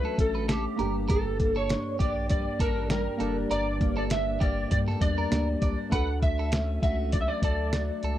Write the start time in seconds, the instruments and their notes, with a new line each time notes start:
Already playing: steel-string acoustic guitar F#3 A3 C#4, synth keys A3 D4 A4 F#5, electric slide guitar B4
0.05 clean electric guitar A4
0.18 analog synth bass A1, steel-string acoustic guitar C#4, electric slide guitar A4, kick, closed hi-hat
0.35 clean electric guitar B4
0.48 electric slide guitar G4, clean electric guitar A4, snare, closed hi-hat
0.76 analog synth bass G1, steel-string acoustic guitar G2, synth keys A#3 D4 G4, clean electric guitar A#4, closed hi-hat
1.08 steel-string acoustic guitar G2, electric slide guitar A4, clean electric guitar A#4, kick, closed hi-hat
1.40 steel-string acoustic guitar A#3, kick, closed hi-hat
1.56 clean electric guitar A4, electric slide guitar C#5
1.69 steel-string acoustic guitar D4, snare, closed hi-hat
1.99 analog synth bass A#1, steel-string acoustic guitar A#3, clean electric guitar G4, electric slide guitar D5, kick, closed hi-hat
2.29 steel-string acoustic guitar G3, electric slide guitar D5, kick, closed hi-hat
2.60 analog synth bass A1, steel-string acoustic guitar D4, clean electric guitar A4, electric slide guitar A#4, kick, closed hi-hat
2.90 steel-string acoustic guitar G3, electric slide guitar A#4, snare, closed hi-hat
3.18 analog synth bass F#1, synth keys A#3 D4 G4, steel-string acoustic guitar D4, clean electric guitar A4, closed hi-hat
3.23 synth keys D5
3.51 analog synth bass G1, steel-string acoustic guitar G2, clean electric guitar A#4, electric slide guitar D5, closed hi-hat
3.81 steel-string acoustic guitar A#3, kick, closed hi-hat
3.97 clean electric guitar A4, electric slide guitar D5
4.10 steel-string acoustic guitar D4, electric slide guitar E5, snare, closed hi-hat
4.40 analog synth bass G1, steel-string acoustic guitar A#3, clean electric guitar G4, electric slide guitar D5, kick, closed hi-hat
4.71 analog synth bass G2, steel-string acoustic guitar G3, electric slide guitar D5, kick, closed hi-hat
4.88 clean electric guitar A4, snare
5.01 analog synth bass E2, steel-string acoustic guitar D4, electric slide guitar D5, kick, closed hi-hat
5.18 clean electric guitar A#4
5.31 analog synth bass D2, steel-string acoustic guitar G3, synth keys A#3 D4 G4 D5, clean electric guitar A#4, snare, closed hi-hat
5.62 analog synth bass C#2, steel-string acoustic guitar D4, clean electric guitar D5, kick, closed hi-hat
5.90 analog synth bass D2, synth keys A3 D4 F#4, clean electric guitar B4, electric slide guitar F#5, kick, closed hi-hat
5.95 synth keys A4
6.22 steel-string acoustic guitar A3, electric slide guitar E5, kick, closed hi-hat
6.39 clean electric guitar A4
6.52 steel-string acoustic guitar C#4, snare, closed hi-hat
6.82 analog synth bass C#2, steel-string acoustic guitar A3, clean electric guitar F#4, electric slide guitar E5, kick, closed hi-hat
7.12 steel-string acoustic guitar F#3, electric slide guitar D5, kick, closed hi-hat
7.21 electric slide guitar E5
7.28 electric slide guitar D5
7.42 analog synth bass D2, clean electric guitar A4, electric slide guitar D5, kick, closed hi-hat
7.73 steel-string acoustic guitar F#3, snare, closed hi-hat
8.03 analog synth bass C#2, clean electric guitar A4, closed hi-hat